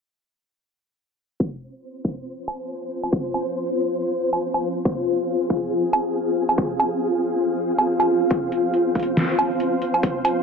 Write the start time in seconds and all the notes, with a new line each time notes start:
1.39 C4 F4 C5, kick
2.05 kick
2.48 low woodblock
3.03 low woodblock
3.13 kick
3.34 low woodblock
4.33 low woodblock
4.54 low woodblock
4.85 G#4, kick
5.50 kick
5.93 low woodblock
6.49 low woodblock
6.58 kick
6.80 low woodblock
7.78 low woodblock
8.00 low woodblock
8.30 C5, kick, closed hi-hat
8.52 closed hi-hat
8.74 closed hi-hat
8.95 kick, closed hi-hat
9.00 closed hi-hat
9.03 closed hi-hat
9.17 snare, closed hi-hat
9.39 closed hi-hat, low woodblock
9.60 closed hi-hat
9.82 closed hi-hat
9.94 low woodblock
10.03 kick, closed hi-hat
10.25 closed hi-hat, low woodblock